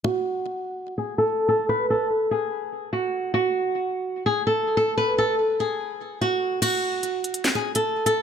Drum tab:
CC |----------------|----------------|----------------|----------------|
HH |----------------|----------------|----------------|----------------|
CP |----------------|----------------|----------------|----------------|
SD |----------------|----------------|----------------|----------------|

CC |x---------------|
HH |x---x-xxx--x--x-|
CP |--------x-------|
SD |--------o-------|